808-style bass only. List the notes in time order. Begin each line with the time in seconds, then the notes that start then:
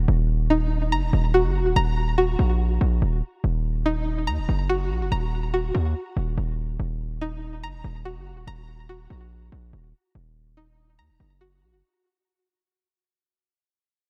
0.08 D#1
0.92 F#1
1.03 D#1
1.13 D#1
1.45 F#1
1.60 D#1
1.76 D#1
2.39 A#1
2.81 A#1
3.02 D#1
3.44 D#1
4.28 D#2
4.38 D#1
4.49 F#1
4.91 A#1
5.01 F#1
5.12 D#1
5.75 D#2
6.17 D#1
6.38 D#1
6.79 D#1
7.63 F#1
7.74 D#1
7.84 D#1
8.16 F#1
8.31 D#1
8.47 D#1
9.10 A#1
9.52 A#1
9.73 D#1
10.15 D#1
10.99 D#2
11.10 D#1
11.20 F#1
11.62 A#1
11.73 F#1